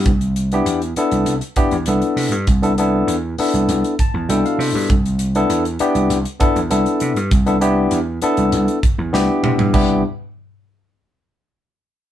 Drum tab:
CC |----------------|----------------|----------------|----------------|
HH |xxxxxxxxxxxxxxox|xxx-x-oxxxx-xxo-|xxxxxxxxxxxxxxxx|xxx-x-xxxxx-----|
SD |----------------|----------------|----------------|------------o---|
T2 |----------------|----------------|----------------|--------------o-|
FT |----------------|----------------|----------------|---------------o|
BD |o---------o-----|o---------o-----|o---------o-----|o---------o-----|

CC |x---------------|
HH |----------------|
SD |----------------|
T2 |----------------|
FT |----------------|
BD |o---------------|